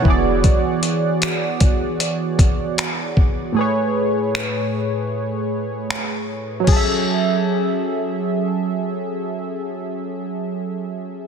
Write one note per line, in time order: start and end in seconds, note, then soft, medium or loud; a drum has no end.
0.00 3.11 E3 medium
0.00 3.12 B3 medium
0.00 0.26 C#5 medium
0.00 0.26 F#5 medium
0.00 downlifter medium
0.05 0.43 E1 loud
0.05 0.43 D3 medium
0.05 0.43 F#3 medium
0.05 0.43 G#3 medium
0.05 0.44 E4 medium
0.05 3.13 F#4 medium
0.05 3.14 G#4 medium
0.05 kick medium
0.10 3.15 D5 medium
0.44 kick loud
0.44 closed hi-hat medium
0.83 closed hi-hat medium
1.22 finger snap loud
1.22 closed hi-hat medium
1.60 kick medium
1.60 closed hi-hat medium
2.00 closed hi-hat medium
2.39 kick medium
2.39 closed hi-hat medium
2.78 finger snap loud
2.78 closed hi-hat medium
3.17 kick medium
3.52 6.62 A2 medium
3.52 6.63 A3 medium
3.56 6.64 G#4 medium
3.56 6.65 B4 medium
3.61 6.66 C#5 medium
4.35 finger snap loud
5.91 finger snap loud
6.60 9.59 F#3 medium
6.64 9.63 C#4 medium
6.64 kick medium
6.64 crash medium
6.68 9.67 G#4 medium
6.72 9.71 A4 medium
6.76 9.75 E5 medium